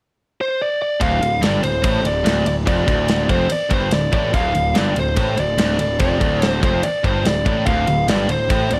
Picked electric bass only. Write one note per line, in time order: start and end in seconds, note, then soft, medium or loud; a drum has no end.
1.01 1.20 D1 medium
1.21 1.41 D1 medium
1.42 1.62 G1 medium
1.63 1.83 D1 medium
1.84 2.03 A1 medium
2.04 2.24 D1 medium
2.25 2.45 D1 medium
2.46 2.65 D1 medium
2.67 2.87 F1 medium
2.88 3.27 D1 medium
3.30 3.49 F1 medium
3.50 muted picked electric bass stroke soft
3.71 3.91 G1 medium
3.91 4.11 D1 medium
4.13 4.32 A1 medium
4.34 4.53 D1 loud
4.55 4.74 D1 medium
4.75 4.94 G1 medium
4.96 5.16 D1 medium
5.17 5.36 A1 medium
5.38 5.57 D1 medium
5.59 5.78 D1 medium
5.79 5.98 D1 medium
6.01 6.20 F1 medium
6.21 6.60 D1 medium
6.63 6.82 F1 medium
6.85 muted picked electric bass stroke soft
7.04 7.23 G1 medium
7.26 7.45 D1 medium
7.46 7.65 A1 medium
7.67 7.86 D1 medium
7.88 8.07 D1 medium
8.08 8.28 G1 loud
8.29 8.48 D1 medium
8.50 8.69 A1 medium
8.71 8.80 D1 medium